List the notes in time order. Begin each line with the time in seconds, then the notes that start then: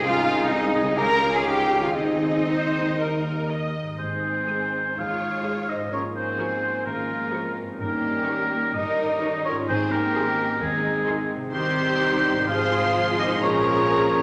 Already playing: C3 D#3 G#3 C4 D#4 G#4 D#5
0.00 C2 C#4 F4 G#4 F5
0.05 D#4
0.48 C4 D#4 D#5
0.80 C#3
0.85 G#3
0.90 F4
0.94 C#2 C#3 C#4 G4 G#4 A#4 F5 A#5
0.98 C#4 F4 A#5
1.33 F4 G#4 G#5
1.45 D#4 G4 G5
1.78 D#3
1.83 C4 C#4 F4 F5
1.88 D#4
1.92 C4 D#4 G#4 D#5
1.96 D#2 D#3 C4 D#4 D#5
2.48 C5
2.81 D#3
2.85 A#3
2.89 D#4
2.94 G4
2.99 G3 A#3 A#4
3.49 D#5
3.82 G#2
3.87 G#3
3.91 D#4
3.96 G#1 G#3 C4 D#4 G#4 C5
4.00 D#3 G#3
4.47 G#3 G#4 D#6
4.97 D#2 F4 G#4 C#5 F5
5.44 G#3 G#4 D#6
5.68 D#4 G4 C5 D#5
5.75 G#2
5.79 C#4
5.84 F4
5.89 G#1 F3 G#3 A#3 C#4 F4 A#4 C#5
5.93 C#5
6.14 C4 D#4 G#4 C5
6.39 F3 A#4 C#6
6.86 G#1 F3 G#3 A#3 C#4 F4 A#4
7.32 F3 C4 A#4 C#6
7.62 G2
7.66 C#4
7.71 D#4
7.75 C#4 A#4
7.79 G1 D#3 G3 A#3 C#4 D#4 G4 A#4
8.26 D#3 A#4 C#6
8.74 G1 D#3 G3 C#4 D#4 G4 A#4 D#5
9.22 D#3 A#4 C#6
9.45 C#4 F4 A#4 C#5
9.51 G#2
9.55 C4
9.60 D#4
9.64 D#3 C5
9.68 G#1 G#3 C4 D#4 G#4 C5
9.92 A#3 C#4 G4 A#4
10.15 D#3 G#4 C6
10.60 D#2 D#3 G#3 C4 D#4 G#4
11.07 D#3 G#4 C6
11.36 C3
11.41 C4
11.45 D#4
11.50 C2 D#3 G3 C4 D#4 G4 C5 C6
11.54 C4 D#4 G4 C5
12.31 G#2
12.35 C4
12.40 F4
12.45 F3 F4 G#4 C5 F5
12.49 G#1 F3 G#3 G#4 C5 F5 C6
13.19 D#4 G4 C5 D#5
13.24 A#2
13.29 G#3
13.33 F4
13.38 F3 A#3 C#4 F4 G#4 A#4
13.42 A#1 C#5 A#5
14.19 G2